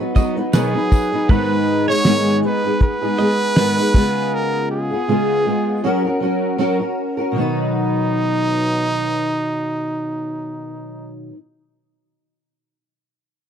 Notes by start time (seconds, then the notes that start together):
Already playing: F#4 B4
0.00 F#3 B3 D#4
0.15 F#3 B3 D#4 B4 D#5, kick, tambourine, shaker
0.36 F#3 B3 D#4 B4, shaker
0.53 B2 D#3 F#3 B3 D#4 G#4 B4, snare, tambourine, shaker
0.74 F#3 B3 D#4 B4
0.91 kick, tambourine, shaker
1.12 F#3 B3 D#4 B4, shaker
1.29 G#2 D#3 G#3 B3 D#4 G#4 B4, kick, shaker
1.67 shaker
1.87 G#3 B3 D#4 G#4 C#5, shaker
2.05 G#2 D#3 G#3 B3 D#4 G#4, snare
2.43 G#3 B3 D#4 G#4 B4, shaker
2.64 G#3 B3 D#4 G#4, shaker
2.81 B4, kick, shaker
3.02 G#3 B3 D#4 G#4
3.18 G#3 B3 D#4 G#4 D#5, shaker
3.40 shaker
3.56 G#2 D#3 G#3 B3 D#4 G#4 B4, snare, shaker
3.77 G#3 B3 D#4 G#4
3.94 C#3 G#3 B3 F4 G#4, kick, crash
4.35 A#4
4.72 G#4
4.90 B3 F4 G#4
5.08 C#3 G#3 B3 F4 G#4
5.46 G#3 B3 F4 G#4
5.84 F#3 C#4 F#4 A#4
6.04 C#4 F#4 A#4
6.20 F#3 C#4 F#4 A#4
6.58 F#3 C#4 F#4 A#4
6.80 C#4 F#4 A#4
7.17 C#4 F#4 A#4
7.32 B2 D#3
7.36 F#3 B3 D#4
7.42 B4